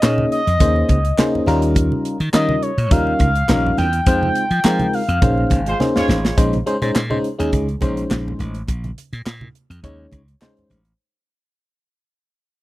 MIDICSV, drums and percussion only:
0, 0, Header, 1, 2, 480
1, 0, Start_track
1, 0, Tempo, 576923
1, 1463, Time_signature, 4, 2, 24, 8
1, 10503, End_track
2, 0, Start_track
2, 0, Title_t, "Drums"
2, 22, Note_on_c, 9, 62, 36
2, 25, Note_on_c, 9, 38, 127
2, 25, Note_on_c, 9, 39, 98
2, 105, Note_off_c, 9, 62, 0
2, 108, Note_off_c, 9, 39, 0
2, 109, Note_off_c, 9, 38, 0
2, 149, Note_on_c, 9, 63, 82
2, 233, Note_off_c, 9, 63, 0
2, 266, Note_on_c, 9, 42, 60
2, 349, Note_off_c, 9, 42, 0
2, 394, Note_on_c, 9, 42, 57
2, 477, Note_off_c, 9, 42, 0
2, 500, Note_on_c, 9, 42, 93
2, 501, Note_on_c, 9, 62, 34
2, 501, Note_on_c, 9, 63, 75
2, 501, Note_on_c, 9, 64, 75
2, 503, Note_on_c, 9, 36, 113
2, 583, Note_off_c, 9, 42, 0
2, 584, Note_off_c, 9, 62, 0
2, 584, Note_off_c, 9, 63, 0
2, 584, Note_off_c, 9, 64, 0
2, 586, Note_off_c, 9, 36, 0
2, 632, Note_on_c, 9, 62, 30
2, 715, Note_off_c, 9, 62, 0
2, 738, Note_on_c, 9, 63, 87
2, 741, Note_on_c, 9, 42, 73
2, 743, Note_on_c, 9, 36, 98
2, 821, Note_off_c, 9, 63, 0
2, 824, Note_off_c, 9, 42, 0
2, 826, Note_off_c, 9, 36, 0
2, 871, Note_on_c, 9, 42, 55
2, 954, Note_off_c, 9, 42, 0
2, 985, Note_on_c, 9, 63, 78
2, 986, Note_on_c, 9, 39, 87
2, 987, Note_on_c, 9, 38, 112
2, 1068, Note_off_c, 9, 63, 0
2, 1070, Note_off_c, 9, 38, 0
2, 1070, Note_off_c, 9, 39, 0
2, 1125, Note_on_c, 9, 62, 35
2, 1125, Note_on_c, 9, 64, 70
2, 1208, Note_off_c, 9, 62, 0
2, 1208, Note_off_c, 9, 64, 0
2, 1218, Note_on_c, 9, 64, 72
2, 1230, Note_on_c, 9, 42, 75
2, 1301, Note_off_c, 9, 64, 0
2, 1313, Note_off_c, 9, 42, 0
2, 1349, Note_on_c, 9, 42, 58
2, 1432, Note_off_c, 9, 42, 0
2, 1457, Note_on_c, 9, 62, 32
2, 1465, Note_on_c, 9, 36, 116
2, 1465, Note_on_c, 9, 42, 102
2, 1541, Note_off_c, 9, 62, 0
2, 1548, Note_off_c, 9, 36, 0
2, 1548, Note_off_c, 9, 42, 0
2, 1597, Note_on_c, 9, 62, 35
2, 1597, Note_on_c, 9, 63, 55
2, 1680, Note_off_c, 9, 62, 0
2, 1680, Note_off_c, 9, 63, 0
2, 1707, Note_on_c, 9, 42, 88
2, 1790, Note_off_c, 9, 42, 0
2, 1832, Note_on_c, 9, 42, 57
2, 1916, Note_off_c, 9, 42, 0
2, 1941, Note_on_c, 9, 62, 36
2, 1946, Note_on_c, 9, 39, 99
2, 1947, Note_on_c, 9, 38, 127
2, 2024, Note_off_c, 9, 62, 0
2, 2029, Note_off_c, 9, 39, 0
2, 2030, Note_off_c, 9, 38, 0
2, 2070, Note_on_c, 9, 62, 39
2, 2070, Note_on_c, 9, 63, 81
2, 2153, Note_off_c, 9, 62, 0
2, 2153, Note_off_c, 9, 63, 0
2, 2185, Note_on_c, 9, 42, 62
2, 2268, Note_off_c, 9, 42, 0
2, 2313, Note_on_c, 9, 42, 60
2, 2396, Note_off_c, 9, 42, 0
2, 2422, Note_on_c, 9, 42, 85
2, 2423, Note_on_c, 9, 36, 124
2, 2425, Note_on_c, 9, 62, 34
2, 2425, Note_on_c, 9, 63, 74
2, 2425, Note_on_c, 9, 64, 73
2, 2505, Note_off_c, 9, 42, 0
2, 2507, Note_off_c, 9, 36, 0
2, 2508, Note_off_c, 9, 62, 0
2, 2508, Note_off_c, 9, 63, 0
2, 2508, Note_off_c, 9, 64, 0
2, 2554, Note_on_c, 9, 62, 33
2, 2638, Note_off_c, 9, 62, 0
2, 2657, Note_on_c, 9, 63, 83
2, 2661, Note_on_c, 9, 42, 74
2, 2662, Note_on_c, 9, 36, 94
2, 2740, Note_off_c, 9, 63, 0
2, 2744, Note_off_c, 9, 42, 0
2, 2745, Note_off_c, 9, 36, 0
2, 2791, Note_on_c, 9, 42, 54
2, 2874, Note_off_c, 9, 42, 0
2, 2905, Note_on_c, 9, 39, 92
2, 2906, Note_on_c, 9, 38, 110
2, 2909, Note_on_c, 9, 63, 70
2, 2988, Note_off_c, 9, 39, 0
2, 2989, Note_off_c, 9, 38, 0
2, 2993, Note_off_c, 9, 63, 0
2, 3049, Note_on_c, 9, 62, 35
2, 3049, Note_on_c, 9, 64, 69
2, 3132, Note_off_c, 9, 62, 0
2, 3132, Note_off_c, 9, 64, 0
2, 3142, Note_on_c, 9, 64, 71
2, 3147, Note_on_c, 9, 42, 74
2, 3225, Note_off_c, 9, 64, 0
2, 3230, Note_off_c, 9, 42, 0
2, 3268, Note_on_c, 9, 42, 59
2, 3351, Note_off_c, 9, 42, 0
2, 3381, Note_on_c, 9, 42, 101
2, 3383, Note_on_c, 9, 36, 116
2, 3464, Note_off_c, 9, 42, 0
2, 3467, Note_off_c, 9, 36, 0
2, 3517, Note_on_c, 9, 62, 34
2, 3517, Note_on_c, 9, 63, 52
2, 3600, Note_off_c, 9, 62, 0
2, 3600, Note_off_c, 9, 63, 0
2, 3622, Note_on_c, 9, 42, 85
2, 3705, Note_off_c, 9, 42, 0
2, 3749, Note_on_c, 9, 42, 53
2, 3832, Note_off_c, 9, 42, 0
2, 3864, Note_on_c, 9, 62, 35
2, 3867, Note_on_c, 9, 39, 100
2, 3868, Note_on_c, 9, 38, 127
2, 3947, Note_off_c, 9, 62, 0
2, 3950, Note_off_c, 9, 39, 0
2, 3951, Note_off_c, 9, 38, 0
2, 3989, Note_on_c, 9, 62, 38
2, 3989, Note_on_c, 9, 63, 84
2, 3990, Note_on_c, 9, 42, 38
2, 4072, Note_off_c, 9, 62, 0
2, 4072, Note_off_c, 9, 63, 0
2, 4073, Note_off_c, 9, 42, 0
2, 4105, Note_on_c, 9, 46, 65
2, 4188, Note_off_c, 9, 46, 0
2, 4233, Note_on_c, 9, 42, 58
2, 4317, Note_off_c, 9, 42, 0
2, 4343, Note_on_c, 9, 36, 120
2, 4343, Note_on_c, 9, 42, 87
2, 4343, Note_on_c, 9, 62, 31
2, 4343, Note_on_c, 9, 63, 69
2, 4343, Note_on_c, 9, 64, 70
2, 4426, Note_off_c, 9, 62, 0
2, 4426, Note_off_c, 9, 63, 0
2, 4426, Note_off_c, 9, 64, 0
2, 4427, Note_off_c, 9, 36, 0
2, 4427, Note_off_c, 9, 42, 0
2, 4472, Note_on_c, 9, 62, 32
2, 4555, Note_off_c, 9, 62, 0
2, 4577, Note_on_c, 9, 63, 86
2, 4583, Note_on_c, 9, 36, 91
2, 4583, Note_on_c, 9, 42, 74
2, 4661, Note_off_c, 9, 63, 0
2, 4666, Note_off_c, 9, 36, 0
2, 4666, Note_off_c, 9, 42, 0
2, 4712, Note_on_c, 9, 42, 55
2, 4795, Note_off_c, 9, 42, 0
2, 4827, Note_on_c, 9, 62, 34
2, 4827, Note_on_c, 9, 63, 74
2, 4828, Note_on_c, 9, 38, 61
2, 4910, Note_off_c, 9, 62, 0
2, 4910, Note_off_c, 9, 63, 0
2, 4912, Note_off_c, 9, 38, 0
2, 4956, Note_on_c, 9, 38, 72
2, 4969, Note_on_c, 9, 62, 33
2, 4969, Note_on_c, 9, 64, 75
2, 5039, Note_off_c, 9, 38, 0
2, 5052, Note_off_c, 9, 62, 0
2, 5052, Note_off_c, 9, 64, 0
2, 5059, Note_on_c, 9, 64, 70
2, 5070, Note_on_c, 9, 38, 90
2, 5142, Note_off_c, 9, 64, 0
2, 5153, Note_off_c, 9, 38, 0
2, 5198, Note_on_c, 9, 38, 99
2, 5281, Note_off_c, 9, 38, 0
2, 5305, Note_on_c, 9, 36, 112
2, 5306, Note_on_c, 9, 42, 98
2, 5389, Note_off_c, 9, 36, 0
2, 5389, Note_off_c, 9, 42, 0
2, 5432, Note_on_c, 9, 42, 34
2, 5439, Note_on_c, 9, 62, 35
2, 5439, Note_on_c, 9, 63, 51
2, 5516, Note_off_c, 9, 42, 0
2, 5522, Note_off_c, 9, 62, 0
2, 5522, Note_off_c, 9, 63, 0
2, 5547, Note_on_c, 9, 42, 82
2, 5630, Note_off_c, 9, 42, 0
2, 5672, Note_on_c, 9, 42, 56
2, 5755, Note_off_c, 9, 42, 0
2, 5788, Note_on_c, 9, 39, 102
2, 5789, Note_on_c, 9, 38, 126
2, 5871, Note_off_c, 9, 39, 0
2, 5872, Note_off_c, 9, 38, 0
2, 5912, Note_on_c, 9, 62, 38
2, 5912, Note_on_c, 9, 63, 82
2, 5995, Note_off_c, 9, 62, 0
2, 5995, Note_off_c, 9, 63, 0
2, 6026, Note_on_c, 9, 42, 62
2, 6109, Note_off_c, 9, 42, 0
2, 6155, Note_on_c, 9, 42, 59
2, 6238, Note_off_c, 9, 42, 0
2, 6261, Note_on_c, 9, 62, 31
2, 6261, Note_on_c, 9, 63, 71
2, 6261, Note_on_c, 9, 64, 72
2, 6264, Note_on_c, 9, 36, 113
2, 6264, Note_on_c, 9, 42, 81
2, 6344, Note_off_c, 9, 62, 0
2, 6344, Note_off_c, 9, 63, 0
2, 6344, Note_off_c, 9, 64, 0
2, 6347, Note_off_c, 9, 36, 0
2, 6347, Note_off_c, 9, 42, 0
2, 6394, Note_on_c, 9, 42, 39
2, 6478, Note_off_c, 9, 42, 0
2, 6496, Note_on_c, 9, 63, 85
2, 6504, Note_on_c, 9, 36, 91
2, 6504, Note_on_c, 9, 42, 70
2, 6579, Note_off_c, 9, 63, 0
2, 6587, Note_off_c, 9, 36, 0
2, 6588, Note_off_c, 9, 42, 0
2, 6632, Note_on_c, 9, 42, 55
2, 6716, Note_off_c, 9, 42, 0
2, 6745, Note_on_c, 9, 62, 32
2, 6745, Note_on_c, 9, 63, 71
2, 6748, Note_on_c, 9, 39, 89
2, 6749, Note_on_c, 9, 38, 109
2, 6828, Note_off_c, 9, 62, 0
2, 6828, Note_off_c, 9, 63, 0
2, 6831, Note_off_c, 9, 39, 0
2, 6832, Note_off_c, 9, 38, 0
2, 6889, Note_on_c, 9, 62, 31
2, 6889, Note_on_c, 9, 64, 68
2, 6972, Note_off_c, 9, 62, 0
2, 6972, Note_off_c, 9, 64, 0
2, 6981, Note_on_c, 9, 64, 70
2, 6990, Note_on_c, 9, 42, 71
2, 7064, Note_off_c, 9, 64, 0
2, 7073, Note_off_c, 9, 42, 0
2, 7109, Note_on_c, 9, 42, 56
2, 7192, Note_off_c, 9, 42, 0
2, 7218, Note_on_c, 9, 62, 30
2, 7225, Note_on_c, 9, 42, 99
2, 7226, Note_on_c, 9, 36, 104
2, 7301, Note_off_c, 9, 62, 0
2, 7308, Note_off_c, 9, 42, 0
2, 7309, Note_off_c, 9, 36, 0
2, 7354, Note_on_c, 9, 42, 33
2, 7357, Note_on_c, 9, 62, 34
2, 7357, Note_on_c, 9, 63, 53
2, 7437, Note_off_c, 9, 42, 0
2, 7440, Note_off_c, 9, 62, 0
2, 7440, Note_off_c, 9, 63, 0
2, 7471, Note_on_c, 9, 42, 84
2, 7554, Note_off_c, 9, 42, 0
2, 7594, Note_on_c, 9, 42, 54
2, 7677, Note_off_c, 9, 42, 0
2, 7709, Note_on_c, 9, 39, 94
2, 7710, Note_on_c, 9, 38, 122
2, 7792, Note_off_c, 9, 39, 0
2, 7793, Note_off_c, 9, 38, 0
2, 7830, Note_on_c, 9, 62, 39
2, 7830, Note_on_c, 9, 63, 78
2, 7913, Note_off_c, 9, 62, 0
2, 7913, Note_off_c, 9, 63, 0
2, 7947, Note_on_c, 9, 42, 61
2, 8030, Note_off_c, 9, 42, 0
2, 8076, Note_on_c, 9, 42, 60
2, 8159, Note_off_c, 9, 42, 0
2, 8183, Note_on_c, 9, 62, 31
2, 8183, Note_on_c, 9, 63, 71
2, 8183, Note_on_c, 9, 64, 66
2, 8185, Note_on_c, 9, 36, 113
2, 8185, Note_on_c, 9, 42, 85
2, 8266, Note_off_c, 9, 62, 0
2, 8266, Note_off_c, 9, 63, 0
2, 8266, Note_off_c, 9, 64, 0
2, 8268, Note_off_c, 9, 36, 0
2, 8268, Note_off_c, 9, 42, 0
2, 8416, Note_on_c, 9, 63, 76
2, 8423, Note_on_c, 9, 42, 68
2, 8424, Note_on_c, 9, 36, 86
2, 8499, Note_off_c, 9, 63, 0
2, 8507, Note_off_c, 9, 36, 0
2, 8507, Note_off_c, 9, 42, 0
2, 8554, Note_on_c, 9, 42, 48
2, 8637, Note_off_c, 9, 42, 0
2, 8667, Note_on_c, 9, 39, 89
2, 8668, Note_on_c, 9, 38, 115
2, 8668, Note_on_c, 9, 63, 70
2, 8751, Note_off_c, 9, 38, 0
2, 8751, Note_off_c, 9, 39, 0
2, 8751, Note_off_c, 9, 63, 0
2, 8792, Note_on_c, 9, 42, 35
2, 8808, Note_on_c, 9, 64, 68
2, 8876, Note_off_c, 9, 42, 0
2, 8891, Note_off_c, 9, 64, 0
2, 8901, Note_on_c, 9, 64, 72
2, 8908, Note_on_c, 9, 42, 74
2, 8985, Note_off_c, 9, 64, 0
2, 8991, Note_off_c, 9, 42, 0
2, 9027, Note_on_c, 9, 42, 55
2, 9110, Note_off_c, 9, 42, 0
2, 10503, End_track
0, 0, End_of_file